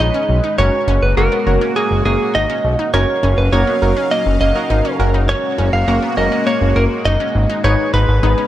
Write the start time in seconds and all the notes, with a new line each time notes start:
Already playing: G#3 D#4 G#4 B4 C#5
0.00 A#1 D#4 D#5
0.14 C#4
0.29 B1
0.44 D#4
0.58 F#1 A#3 C#4 F#4 A#4 C#5
0.88 F#1 C#4
1.02 F#1 B4
1.17 F#1 A#3 C#4 F#4 A#4
1.32 B3
1.47 F#1 C#4 F#4 A#4
1.61 C#4
1.76 A#3 G#4
1.91 F#1
2.05 F#1 A#3 G#4
2.35 G#1 D#4 D#5
2.50 C#4
2.64 B1
2.79 D#4
2.94 F#1 F#3 C#4 D#4 F#4 A#4 C#5 F5
3.23 F#1 C#4
3.38 F#1 B4
3.52 F#1 A#3 D#4 F#4 A#4 C#5
3.67 B3
3.82 F#1 D#4 F#4 A#4
3.97 C#4
4.11 A#3 D#5
4.26 F#1
4.41 F#1 A#3 D#5
4.55 D#4 F#4 A#4
4.70 G#1 D#4
4.85 C#4
5.00 F#1 G#3 A#3 C#4 F#4 A#4
5.14 D#4
5.29 C#4 C#5
5.58 F#1 C#4
5.73 F#1 F5
5.88 F#1 A#3 C#4 F#4 A#4
6.02 B3
6.17 F#1 C#4 F#4 A#4 D#5
6.32 C#4
6.47 A#3 C#5
6.61 F#1
6.76 F#1 A#3 A#4
7.05 F#1 D#4 D#5
7.20 C#4
7.35 G#1
7.50 D#4
7.64 G#1 D#4 G#4 B4 C#5
7.94 G#1 D#4 B4
8.08 G#1
8.23 G#1 B3 D#4 G#4 B4
8.38 C#4